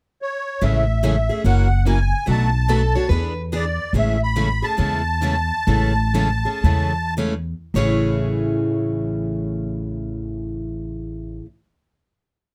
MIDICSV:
0, 0, Header, 1, 6, 480
1, 0, Start_track
1, 0, Key_signature, 3, "major"
1, 0, Tempo, 415225
1, 717, Time_signature, 4, 2, 24, 8
1, 5039, Tempo, 431034
1, 5999, Tempo, 462963
1, 6959, Tempo, 514580
1, 7919, Tempo, 570885
1, 8399, Tempo, 592300
1, 12289, End_track
2, 0, Start_track
2, 0, Title_t, "Accordion"
2, 0, Program_c, 0, 21
2, 254, Note_on_c, 0, 73, 72
2, 735, Note_on_c, 0, 76, 79
2, 739, Note_off_c, 0, 73, 0
2, 1189, Note_off_c, 0, 76, 0
2, 1207, Note_on_c, 0, 76, 74
2, 1647, Note_off_c, 0, 76, 0
2, 1682, Note_on_c, 0, 78, 85
2, 2124, Note_off_c, 0, 78, 0
2, 2183, Note_on_c, 0, 80, 89
2, 2615, Note_off_c, 0, 80, 0
2, 2669, Note_on_c, 0, 81, 92
2, 3565, Note_off_c, 0, 81, 0
2, 4113, Note_on_c, 0, 74, 83
2, 4542, Note_off_c, 0, 74, 0
2, 4607, Note_on_c, 0, 76, 85
2, 4864, Note_off_c, 0, 76, 0
2, 4890, Note_on_c, 0, 83, 100
2, 5349, Note_on_c, 0, 81, 94
2, 5363, Note_off_c, 0, 83, 0
2, 7887, Note_off_c, 0, 81, 0
2, 12289, End_track
3, 0, Start_track
3, 0, Title_t, "Steel-string acoustic guitar"
3, 0, Program_c, 1, 25
3, 3117, Note_on_c, 1, 69, 76
3, 3395, Note_off_c, 1, 69, 0
3, 3415, Note_on_c, 1, 73, 89
3, 3568, Note_off_c, 1, 73, 0
3, 3573, Note_on_c, 1, 71, 77
3, 3946, Note_off_c, 1, 71, 0
3, 8409, Note_on_c, 1, 73, 65
3, 11368, Note_off_c, 1, 73, 0
3, 12289, End_track
4, 0, Start_track
4, 0, Title_t, "Steel-string acoustic guitar"
4, 0, Program_c, 2, 25
4, 717, Note_on_c, 2, 56, 61
4, 727, Note_on_c, 2, 64, 64
4, 729, Note_on_c, 2, 69, 60
4, 963, Note_off_c, 2, 56, 0
4, 969, Note_off_c, 2, 64, 0
4, 969, Note_off_c, 2, 69, 0
4, 1194, Note_on_c, 2, 56, 77
4, 1203, Note_on_c, 2, 64, 81
4, 1203, Note_on_c, 2, 69, 90
4, 1325, Note_off_c, 2, 56, 0
4, 1330, Note_off_c, 2, 64, 0
4, 1330, Note_off_c, 2, 69, 0
4, 1670, Note_on_c, 2, 54, 57
4, 1688, Note_on_c, 2, 70, 69
4, 1689, Note_on_c, 2, 64, 62
4, 1919, Note_off_c, 2, 54, 0
4, 1928, Note_off_c, 2, 70, 0
4, 1929, Note_off_c, 2, 64, 0
4, 2146, Note_on_c, 2, 54, 76
4, 2152, Note_on_c, 2, 64, 72
4, 2162, Note_on_c, 2, 70, 84
4, 2281, Note_off_c, 2, 54, 0
4, 2284, Note_off_c, 2, 64, 0
4, 2289, Note_off_c, 2, 70, 0
4, 2650, Note_on_c, 2, 71, 65
4, 2889, Note_off_c, 2, 71, 0
4, 3118, Note_on_c, 2, 71, 84
4, 3247, Note_off_c, 2, 71, 0
4, 3599, Note_on_c, 2, 71, 61
4, 3844, Note_off_c, 2, 71, 0
4, 4087, Note_on_c, 2, 71, 81
4, 4212, Note_off_c, 2, 71, 0
4, 4566, Note_on_c, 2, 56, 60
4, 4575, Note_on_c, 2, 64, 68
4, 4585, Note_on_c, 2, 69, 69
4, 4809, Note_off_c, 2, 56, 0
4, 4813, Note_off_c, 2, 64, 0
4, 4818, Note_off_c, 2, 69, 0
4, 5040, Note_on_c, 2, 56, 77
4, 5052, Note_on_c, 2, 64, 85
4, 5053, Note_on_c, 2, 69, 89
4, 5167, Note_off_c, 2, 56, 0
4, 5173, Note_off_c, 2, 64, 0
4, 5174, Note_off_c, 2, 69, 0
4, 5517, Note_on_c, 2, 56, 63
4, 5524, Note_on_c, 2, 64, 64
4, 5529, Note_on_c, 2, 69, 63
4, 5763, Note_off_c, 2, 56, 0
4, 5766, Note_off_c, 2, 64, 0
4, 5769, Note_off_c, 2, 69, 0
4, 5988, Note_on_c, 2, 56, 74
4, 6001, Note_on_c, 2, 64, 77
4, 6005, Note_on_c, 2, 69, 95
4, 6120, Note_off_c, 2, 56, 0
4, 6126, Note_off_c, 2, 64, 0
4, 6128, Note_off_c, 2, 69, 0
4, 6469, Note_on_c, 2, 56, 60
4, 6477, Note_on_c, 2, 64, 68
4, 6478, Note_on_c, 2, 69, 65
4, 6718, Note_off_c, 2, 56, 0
4, 6722, Note_off_c, 2, 64, 0
4, 6723, Note_off_c, 2, 69, 0
4, 6952, Note_on_c, 2, 56, 77
4, 6960, Note_on_c, 2, 69, 86
4, 6963, Note_on_c, 2, 64, 84
4, 7080, Note_off_c, 2, 56, 0
4, 7084, Note_off_c, 2, 69, 0
4, 7085, Note_off_c, 2, 64, 0
4, 7431, Note_on_c, 2, 56, 56
4, 7438, Note_on_c, 2, 64, 64
4, 7440, Note_on_c, 2, 69, 64
4, 7678, Note_off_c, 2, 56, 0
4, 7681, Note_off_c, 2, 64, 0
4, 7682, Note_off_c, 2, 69, 0
4, 7927, Note_on_c, 2, 56, 70
4, 7932, Note_on_c, 2, 64, 82
4, 7936, Note_on_c, 2, 69, 84
4, 8050, Note_off_c, 2, 56, 0
4, 8052, Note_off_c, 2, 64, 0
4, 8054, Note_off_c, 2, 69, 0
4, 8420, Note_on_c, 2, 64, 79
4, 11411, Note_off_c, 2, 64, 0
4, 12289, End_track
5, 0, Start_track
5, 0, Title_t, "Steel-string acoustic guitar"
5, 0, Program_c, 3, 25
5, 709, Note_on_c, 3, 52, 63
5, 713, Note_on_c, 3, 49, 56
5, 713, Note_on_c, 3, 57, 62
5, 719, Note_on_c, 3, 68, 65
5, 722, Note_on_c, 3, 61, 63
5, 959, Note_off_c, 3, 52, 0
5, 961, Note_off_c, 3, 49, 0
5, 961, Note_off_c, 3, 57, 0
5, 964, Note_off_c, 3, 68, 0
5, 966, Note_off_c, 3, 61, 0
5, 1189, Note_on_c, 3, 49, 78
5, 1195, Note_on_c, 3, 52, 80
5, 1198, Note_on_c, 3, 61, 82
5, 1199, Note_on_c, 3, 57, 75
5, 1206, Note_on_c, 3, 68, 86
5, 1323, Note_off_c, 3, 49, 0
5, 1326, Note_off_c, 3, 52, 0
5, 1327, Note_off_c, 3, 61, 0
5, 1328, Note_off_c, 3, 57, 0
5, 1331, Note_off_c, 3, 68, 0
5, 1494, Note_on_c, 3, 68, 49
5, 1501, Note_on_c, 3, 61, 45
5, 1516, Note_on_c, 3, 57, 39
5, 1666, Note_off_c, 3, 68, 0
5, 1669, Note_on_c, 3, 49, 55
5, 1670, Note_off_c, 3, 61, 0
5, 1677, Note_off_c, 3, 57, 0
5, 1679, Note_on_c, 3, 52, 65
5, 1683, Note_on_c, 3, 61, 60
5, 1684, Note_on_c, 3, 58, 57
5, 1684, Note_on_c, 3, 66, 68
5, 1919, Note_off_c, 3, 49, 0
5, 1923, Note_off_c, 3, 52, 0
5, 1926, Note_off_c, 3, 58, 0
5, 1926, Note_off_c, 3, 61, 0
5, 1926, Note_off_c, 3, 66, 0
5, 2155, Note_on_c, 3, 49, 72
5, 2155, Note_on_c, 3, 58, 76
5, 2156, Note_on_c, 3, 52, 70
5, 2163, Note_on_c, 3, 61, 77
5, 2164, Note_on_c, 3, 66, 74
5, 2285, Note_off_c, 3, 49, 0
5, 2285, Note_off_c, 3, 52, 0
5, 2285, Note_off_c, 3, 58, 0
5, 2289, Note_off_c, 3, 61, 0
5, 2290, Note_off_c, 3, 66, 0
5, 2612, Note_on_c, 3, 47, 64
5, 2620, Note_on_c, 3, 57, 65
5, 2625, Note_on_c, 3, 62, 66
5, 2626, Note_on_c, 3, 54, 63
5, 2627, Note_on_c, 3, 66, 66
5, 2870, Note_off_c, 3, 47, 0
5, 2874, Note_off_c, 3, 57, 0
5, 2876, Note_off_c, 3, 62, 0
5, 2877, Note_off_c, 3, 54, 0
5, 2878, Note_off_c, 3, 66, 0
5, 3102, Note_on_c, 3, 47, 73
5, 3106, Note_on_c, 3, 54, 81
5, 3112, Note_on_c, 3, 62, 82
5, 3112, Note_on_c, 3, 66, 86
5, 3114, Note_on_c, 3, 57, 82
5, 3238, Note_off_c, 3, 47, 0
5, 3240, Note_off_c, 3, 54, 0
5, 3244, Note_off_c, 3, 57, 0
5, 3244, Note_off_c, 3, 62, 0
5, 3244, Note_off_c, 3, 66, 0
5, 3419, Note_on_c, 3, 66, 49
5, 3425, Note_on_c, 3, 62, 50
5, 3435, Note_on_c, 3, 57, 41
5, 3585, Note_off_c, 3, 62, 0
5, 3589, Note_off_c, 3, 66, 0
5, 3590, Note_on_c, 3, 52, 58
5, 3592, Note_off_c, 3, 57, 0
5, 3597, Note_on_c, 3, 59, 60
5, 3599, Note_on_c, 3, 62, 63
5, 3606, Note_on_c, 3, 68, 68
5, 3839, Note_off_c, 3, 52, 0
5, 3843, Note_off_c, 3, 59, 0
5, 3844, Note_off_c, 3, 62, 0
5, 3847, Note_off_c, 3, 68, 0
5, 4070, Note_on_c, 3, 52, 68
5, 4073, Note_on_c, 3, 59, 72
5, 4077, Note_on_c, 3, 68, 88
5, 4078, Note_on_c, 3, 62, 75
5, 4203, Note_off_c, 3, 52, 0
5, 4205, Note_off_c, 3, 59, 0
5, 4206, Note_off_c, 3, 68, 0
5, 4207, Note_off_c, 3, 62, 0
5, 4555, Note_on_c, 3, 49, 63
5, 4555, Note_on_c, 3, 52, 66
5, 4564, Note_on_c, 3, 61, 66
5, 4565, Note_on_c, 3, 57, 69
5, 4570, Note_on_c, 3, 68, 75
5, 4803, Note_off_c, 3, 49, 0
5, 4803, Note_off_c, 3, 52, 0
5, 4808, Note_off_c, 3, 57, 0
5, 4808, Note_off_c, 3, 61, 0
5, 4811, Note_off_c, 3, 68, 0
5, 5035, Note_on_c, 3, 49, 72
5, 5039, Note_on_c, 3, 52, 73
5, 5044, Note_on_c, 3, 68, 80
5, 5045, Note_on_c, 3, 57, 82
5, 5045, Note_on_c, 3, 61, 88
5, 5165, Note_off_c, 3, 49, 0
5, 5167, Note_off_c, 3, 52, 0
5, 5169, Note_off_c, 3, 68, 0
5, 5170, Note_off_c, 3, 57, 0
5, 5170, Note_off_c, 3, 61, 0
5, 5333, Note_on_c, 3, 68, 49
5, 5340, Note_on_c, 3, 61, 44
5, 5350, Note_on_c, 3, 57, 41
5, 5493, Note_off_c, 3, 57, 0
5, 5495, Note_on_c, 3, 49, 62
5, 5496, Note_off_c, 3, 61, 0
5, 5499, Note_on_c, 3, 52, 63
5, 5502, Note_off_c, 3, 68, 0
5, 5506, Note_on_c, 3, 57, 65
5, 5509, Note_on_c, 3, 61, 72
5, 5515, Note_on_c, 3, 68, 72
5, 5752, Note_off_c, 3, 49, 0
5, 5754, Note_off_c, 3, 52, 0
5, 5758, Note_off_c, 3, 57, 0
5, 5759, Note_off_c, 3, 61, 0
5, 5762, Note_off_c, 3, 68, 0
5, 5996, Note_on_c, 3, 49, 78
5, 6004, Note_on_c, 3, 52, 78
5, 6007, Note_on_c, 3, 57, 78
5, 6008, Note_on_c, 3, 68, 78
5, 6013, Note_on_c, 3, 61, 70
5, 6123, Note_off_c, 3, 49, 0
5, 6127, Note_off_c, 3, 52, 0
5, 6129, Note_off_c, 3, 57, 0
5, 6129, Note_off_c, 3, 68, 0
5, 6132, Note_off_c, 3, 61, 0
5, 6466, Note_on_c, 3, 49, 62
5, 6469, Note_on_c, 3, 52, 73
5, 6472, Note_on_c, 3, 57, 73
5, 6477, Note_on_c, 3, 61, 67
5, 6481, Note_on_c, 3, 68, 62
5, 6717, Note_off_c, 3, 49, 0
5, 6718, Note_off_c, 3, 52, 0
5, 6719, Note_off_c, 3, 57, 0
5, 6722, Note_off_c, 3, 61, 0
5, 6724, Note_off_c, 3, 68, 0
5, 6956, Note_on_c, 3, 49, 81
5, 6957, Note_on_c, 3, 61, 80
5, 6958, Note_on_c, 3, 57, 79
5, 6960, Note_on_c, 3, 52, 78
5, 6961, Note_on_c, 3, 68, 81
5, 7081, Note_off_c, 3, 49, 0
5, 7082, Note_off_c, 3, 61, 0
5, 7083, Note_off_c, 3, 52, 0
5, 7083, Note_off_c, 3, 57, 0
5, 7084, Note_off_c, 3, 68, 0
5, 7243, Note_on_c, 3, 68, 47
5, 7252, Note_on_c, 3, 57, 41
5, 7252, Note_on_c, 3, 61, 46
5, 7412, Note_off_c, 3, 57, 0
5, 7414, Note_off_c, 3, 68, 0
5, 7416, Note_off_c, 3, 61, 0
5, 7422, Note_on_c, 3, 49, 62
5, 7422, Note_on_c, 3, 52, 63
5, 7423, Note_on_c, 3, 57, 59
5, 7427, Note_on_c, 3, 61, 63
5, 7430, Note_on_c, 3, 68, 67
5, 7673, Note_off_c, 3, 49, 0
5, 7673, Note_off_c, 3, 52, 0
5, 7674, Note_off_c, 3, 57, 0
5, 7676, Note_off_c, 3, 61, 0
5, 7678, Note_off_c, 3, 68, 0
5, 7912, Note_on_c, 3, 49, 75
5, 7919, Note_on_c, 3, 52, 75
5, 7919, Note_on_c, 3, 57, 78
5, 7920, Note_on_c, 3, 61, 78
5, 7928, Note_on_c, 3, 68, 80
5, 8042, Note_off_c, 3, 49, 0
5, 8046, Note_off_c, 3, 52, 0
5, 8046, Note_off_c, 3, 57, 0
5, 8047, Note_off_c, 3, 61, 0
5, 8051, Note_off_c, 3, 68, 0
5, 8401, Note_on_c, 3, 45, 76
5, 8409, Note_on_c, 3, 52, 77
5, 8410, Note_on_c, 3, 49, 76
5, 8414, Note_on_c, 3, 57, 84
5, 8414, Note_on_c, 3, 61, 75
5, 8419, Note_on_c, 3, 68, 80
5, 11393, Note_off_c, 3, 45, 0
5, 11400, Note_off_c, 3, 52, 0
5, 11401, Note_off_c, 3, 49, 0
5, 11405, Note_off_c, 3, 57, 0
5, 11405, Note_off_c, 3, 61, 0
5, 11410, Note_off_c, 3, 68, 0
5, 12289, End_track
6, 0, Start_track
6, 0, Title_t, "Upright bass"
6, 0, Program_c, 4, 32
6, 715, Note_on_c, 4, 33, 72
6, 1482, Note_off_c, 4, 33, 0
6, 1667, Note_on_c, 4, 30, 74
6, 2437, Note_off_c, 4, 30, 0
6, 2628, Note_on_c, 4, 35, 79
6, 3398, Note_off_c, 4, 35, 0
6, 3579, Note_on_c, 4, 40, 81
6, 4353, Note_off_c, 4, 40, 0
6, 4543, Note_on_c, 4, 33, 74
6, 5317, Note_off_c, 4, 33, 0
6, 5509, Note_on_c, 4, 40, 72
6, 6282, Note_off_c, 4, 40, 0
6, 6464, Note_on_c, 4, 33, 84
6, 7240, Note_off_c, 4, 33, 0
6, 7413, Note_on_c, 4, 40, 75
6, 8208, Note_off_c, 4, 40, 0
6, 8393, Note_on_c, 4, 33, 83
6, 11352, Note_off_c, 4, 33, 0
6, 12289, End_track
0, 0, End_of_file